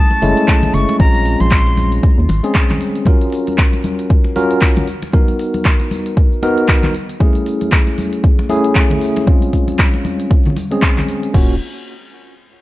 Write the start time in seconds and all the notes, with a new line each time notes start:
Already playing: G#3 A3 C#4 E4 A5
0.11 muted conga, cabasa
0.22 F#1 G#3 A3 C#4 E4, open hi-hat, high conga, cabasa
0.37 closed hi-hat, cabasa
0.48 kick, clap, cabasa
0.63 closed hi-hat, muted conga, high conga, low conga
0.74 F#1 C#6, open hi-hat, cabasa
0.89 closed hi-hat, muted conga, cabasa
0.99 A#1 G#3 C4 C#4 F4 A#5, kick, high conga, cabasa
1.15 closed hi-hat, cabasa
1.26 open hi-hat, cabasa
1.41 A#1 C6, closed hi-hat, high conga, cabasa
1.51 kick, clap, cabasa
1.66 closed hi-hat, muted conga
1.77 open hi-hat, high conga, cabasa
1.92 closed hi-hat, cabasa
2.03 kick, cabasa
2.18 D#2, cabasa
2.29 G#1, open hi-hat, muted conga, high conga, cabasa
2.44 G#3 C4 C#4 G#4, closed hi-hat, cabasa
2.55 kick, clap, cabasa
2.70 clap, closed hi-hat, high conga, low conga
2.81 open hi-hat, cabasa
2.96 closed hi-hat, cabasa
3.05 C#4 F4 F#4 A#4, kick, high conga, cabasa
3.22 closed hi-hat, cabasa
3.33 open hi-hat, cabasa
3.47 closed hi-hat, high conga, cabasa
3.58 kick, clap, cabasa
3.73 closed hi-hat, muted conga
3.84 open hi-hat, high conga, cabasa
3.99 closed hi-hat, cabasa
4.10 kick, cabasa
4.24 muted conga, cabasa
4.36 C#4 F4 F#4 A#4, open hi-hat, high conga, cabasa
4.51 closed hi-hat, cabasa
4.61 kick, clap, cabasa
4.76 closed hi-hat, muted conga, high conga, low conga
4.88 open hi-hat, cabasa
5.02 closed hi-hat, muted conga, cabasa
5.13 B3 D#4 F#4 A#4, kick, high conga, cabasa
5.28 closed hi-hat, cabasa
5.39 open hi-hat, cabasa
5.54 closed hi-hat, high conga, cabasa
5.65 kick, clap, cabasa
5.80 closed hi-hat, muted conga
5.91 open hi-hat, high conga, cabasa
6.06 closed hi-hat, cabasa
6.17 kick, cabasa
6.32 cabasa
6.42 B3 D#4 F#4 A#4, open hi-hat, muted conga, high conga, cabasa
6.58 closed hi-hat, cabasa
6.69 kick, clap, cabasa
6.83 clap, closed hi-hat, high conga, low conga
6.95 open hi-hat, cabasa
7.09 closed hi-hat, cabasa
7.20 A3 C#4 E4 G#4, kick, high conga, cabasa
7.35 closed hi-hat, cabasa
7.46 open hi-hat, cabasa
7.61 closed hi-hat, high conga, cabasa
7.72 kick, clap, cabasa
7.87 closed hi-hat, muted conga
7.98 open hi-hat, high conga, cabasa
8.13 closed hi-hat, cabasa
8.24 kick, cabasa
8.39 muted conga, cabasa
8.49 A3 C#4 E4 G#4, open hi-hat, high conga, cabasa
8.65 closed hi-hat, cabasa
8.75 kick, clap, cabasa
8.90 closed hi-hat, muted conga, high conga, low conga
9.01 open hi-hat, cabasa
9.16 closed hi-hat, muted conga, cabasa
9.27 G#3 C4 C#4 F4, kick, high conga, cabasa
9.42 closed hi-hat, cabasa
9.53 kick, open hi-hat, cabasa
9.68 closed hi-hat, high conga, cabasa
9.79 kick, clap, cabasa
9.94 closed hi-hat, muted conga, cabasa
10.05 open hi-hat, high conga, cabasa
10.20 closed hi-hat, cabasa
10.31 kick, cabasa
10.46 closed hi-hat, low conga, cabasa
10.57 open hi-hat, muted conga, high conga, cabasa
10.71 G#3 C4 C#4 G#4, closed hi-hat, cabasa
10.82 kick, clap, cabasa
10.97 clap, closed hi-hat, high conga, low conga, cabasa
11.08 open hi-hat, cabasa
11.23 closed hi-hat, cabasa
11.34 D#1 A#3 C#4 F4 F#4, kick, crash